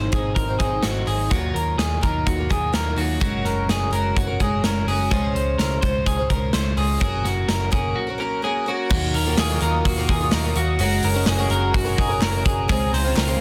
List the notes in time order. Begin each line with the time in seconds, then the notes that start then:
Already playing: G#2 D#3 F#3 C4 D#4 C5
0.12 G#1 D#3 F#3 C4 G#4, kick, closed hi-hat
0.16 D#4
0.35 G#1 A#4, kick, closed hi-hat
0.48 F#3 C4 D#4
0.59 G#1 D#3 F#3 C4 D#4 G#4, kick, closed hi-hat
0.83 G#1 D#3 F#3 C4 D#4 F#4, snare, closed hi-hat
1.06 G#1 D#3 F#3 C4 D#4 G#4, open hi-hat
1.31 D#2 D#3 F#3 A#3 F4 F#4, kick, closed hi-hat
1.54 D#2 A#4, closed hi-hat
1.78 D#2 G#4, snare, closed hi-hat
2.01 D#2 D#3 F#3 A#3 F4 A#4, kick, closed hi-hat
2.26 D#2 F#4, kick, closed hi-hat
2.36 A#3 F4
2.40 F#3
2.49 D#2 D#3 F#3 A#3 F4 G#4, kick, closed hi-hat
2.73 D#2 D#3 F#3 A#3 F4 A#4, snare, closed hi-hat
2.96 D#2 D#3 F#3 A#3 F4 F#4, open hi-hat
3.20 F#1 F#3 G#3 C#4 F#4 A#4, kick, closed hi-hat
3.45 F#1 A#4, snare, closed hi-hat
3.68 F#1 G#4, snare, closed hi-hat
3.91 F#1 G#3 C#4 F#4 A#4, closed hi-hat
4.16 F#1 F#4, kick, closed hi-hat
4.27 C#4 F#4 A#4
4.40 F#1 G#3 C#4 F#4 G#4 A#4, kick, closed hi-hat
4.63 F#1 G#3 C#4 F#4 A#4, snare, closed hi-hat
4.68 A#4
4.87 F#1 G#3 C#4 F#4 G#4, open hi-hat
4.91 A#4
5.11 C#2 C#3 F3 G#3 C#4 F4 G#4 C5, kick, closed hi-hat
5.35 C#2 C5, closed hi-hat
5.58 C#2 A#4, snare, closed hi-hat
5.81 C#2 G#3 C#4 F4 C5, kick, closed hi-hat
5.86 C5
6.06 C#2 G#4, kick, closed hi-hat
6.19 G#3 C#4 F4 C5
6.29 C#2 G#3 C#4 F4 A#4 C5, kick, closed hi-hat
6.53 C#2 G#3 C#4 F4 C5, snare, closed hi-hat
6.77 C#2 G#3 C#4 F4 G#4 C5, open hi-hat
7.00 F#3 A#3 C#4 F#4 G#4 A#4, kick, closed hi-hat
7.24 F#1 F#4, snare, closed hi-hat
7.48 F#1 A#4, snare, closed hi-hat
7.71 F#1 A#3 C#4 F#4 G#4 A#4, kick, closed hi-hat
7.96 F#4
8.07 C#4 F#4 A#4
8.18 A#3 C#4 F#4 A#4
8.42 A#3 C#4 F#4 G#4 A#4
8.66 A#3 C#4 F#4 A#4
8.89 D#2 D#3 F#3 A#3 F#4 A#4 D#5 F5 D#6, kick, crash
9.13 D#2 A#4, hi-hat pedal, open hi-hat
9.26 D#3 F#3 A#3 F4
9.37 D#2 G#4, snare, clap, hi-hat pedal, open hi-hat
9.50 D#3 F#3 A#3 F4
9.60 D#2 A#4, hi-hat pedal, open hi-hat
9.85 D#2 F#4, kick, hi-hat pedal, open hi-hat
9.97 D#3 F#3 A#3 F4
10.09 D#2 G#4, kick, hi-hat pedal, open hi-hat
10.20 F#3 A#3 F4
10.31 D#2 A#4, snare, clap, hi-hat pedal, open hi-hat
10.44 F#3 A#3 F4
10.55 D#2 F#4, hi-hat pedal, open hi-hat
10.79 F#1 G#3 C#4 F#4 A#4 G#5 A#5, hi-hat pedal, open hi-hat
10.83 A#4
11.02 F#1 A#4, hi-hat pedal, open hi-hat
11.14 F#3 G#3 C#4 F#4 A#4
11.26 F#1 G#4, snare, clap, hi-hat pedal, open hi-hat
11.38 F#3 G#3 C#4 F#4 A#4
11.50 F#1 A#4, hi-hat pedal, open hi-hat
11.74 F#4, kick, hi-hat pedal, open hi-hat
11.85 F#3 G#3 C#4 F#4 A#4
11.98 F#1 G#4, kick, hi-hat pedal, open hi-hat
12.09 C#4 F#4 A#4
12.21 F#1 A#4, snare, clap, hi-hat pedal, open hi-hat
12.33 C#4 F#4 A#4
12.45 F#1 G#4, kick, hi-hat pedal, open hi-hat
12.68 C#2 C#3 G#3 C4 F4 G#4 C5 F5, kick, hi-hat pedal, open hi-hat
12.92 C#2 C5, snare, hi-hat pedal, open hi-hat
13.04 C#3 G#3 C4 F4
13.16 C#2 A#4, snare, clap, hi-hat pedal, open hi-hat
13.28 C#3 G#3 C4 F4